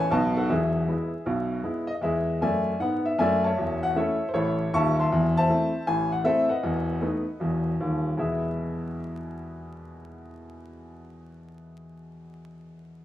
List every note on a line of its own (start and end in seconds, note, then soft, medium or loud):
0.00 0.13 A1 medium
0.00 0.13 A2 medium
0.00 0.13 A3 soft
0.00 0.13 C#4 soft
0.00 0.13 E4 soft
0.00 0.11 B4 medium
0.00 0.13 C#5 medium
0.00 0.11 G#5 medium
0.00 0.11 A5 medium
0.11 0.43 B1 medium
0.11 0.44 B2 medium
0.11 0.32 F#3 soft
0.11 0.33 B3 medium
0.11 0.33 D#4 soft
0.11 0.35 D#5 medium
0.11 0.36 A5 medium
0.36 0.49 A4 medium
0.36 0.50 F#5 medium
0.49 0.82 E1 medium
0.49 0.82 E2 medium
0.49 1.61 G#4 medium
0.49 1.65 E5 medium
0.88 1.09 G#3 soft
0.88 1.09 B3 soft
0.88 1.10 E4 soft
1.26 1.59 B1 medium
1.26 1.59 B2 medium
1.63 1.85 G#3 soft
1.63 1.85 B3 soft
1.63 1.86 E4 soft
1.87 1.94 D#5 medium
1.95 2.01 D#5 soft
2.01 2.33 E2 medium
2.01 2.34 G#3 medium
2.01 2.39 G#4 medium
2.01 2.39 B4 soft
2.01 2.41 E5 medium
2.41 2.72 F#2 medium
2.41 2.73 A3 medium
2.41 2.78 D5 medium
2.41 2.78 E5 soft
2.41 2.80 G#5 medium
2.80 3.10 G#2 medium
2.80 3.12 B3 medium
2.80 3.04 F#5 medium
3.05 3.18 E5 medium
3.18 3.49 F#2 medium
3.18 3.50 A3 medium
3.18 3.42 D5 medium
3.18 3.42 E5 medium
3.18 3.43 G#5 medium
3.44 3.80 C#5 medium
3.44 3.80 E5 medium
3.44 3.82 A5 medium
3.58 3.90 E1 medium
3.58 3.90 E2 medium
3.83 3.96 F#5 loud
3.96 4.17 A3 soft
3.96 4.17 C#4 soft
3.96 4.17 E4 soft
3.96 4.27 A4 medium
3.96 4.27 C#5 soft
3.96 4.29 E5 medium
4.29 4.33 C5 medium
4.34 4.66 A1 medium
4.34 4.66 A2 medium
4.34 4.70 E4 medium
4.34 4.70 A4 medium
4.34 4.72 C#5 medium
4.73 5.04 D#1 medium
4.73 5.03 D#2 medium
4.73 4.96 E5 medium
4.73 4.96 A5 medium
4.73 4.97 C#6 loud
5.00 5.34 E5 medium
5.00 5.34 A5 medium
5.00 5.36 C6 medium
5.12 5.44 E1 medium
5.12 5.44 E2 medium
5.37 5.85 C5 medium
5.37 5.85 E5 medium
5.37 5.88 A5 loud
5.49 5.70 A3 soft
5.49 5.70 C4 soft
5.49 5.71 E4 medium
5.87 6.20 A1 medium
5.87 6.20 A2 medium
5.87 6.11 G#5 medium
6.12 6.26 F#5 medium
6.24 6.45 A3 soft
6.24 6.46 C4 medium
6.24 6.46 E4 medium
6.24 6.48 A4 medium
6.24 6.48 C5 medium
6.24 6.49 E5 medium
6.49 7.61 B4 medium
6.49 7.61 D#5 medium
6.49 7.65 F#5 medium
6.63 6.96 E1 medium
6.63 6.96 E2 medium
7.02 7.23 A3 soft
7.02 7.23 B3 soft
7.02 7.23 D#4 soft
7.40 7.73 E1 medium
7.40 7.73 E2 medium
7.80 8.10 D#1 medium
7.80 8.10 D#2 medium
8.17 12.00 E2 soft
8.17 12.00 B2 soft
8.17 12.00 G#3 soft
8.17 12.01 B3 soft
8.17 12.00 E4 soft
8.17 12.01 G#4 soft
8.17 12.02 E5 medium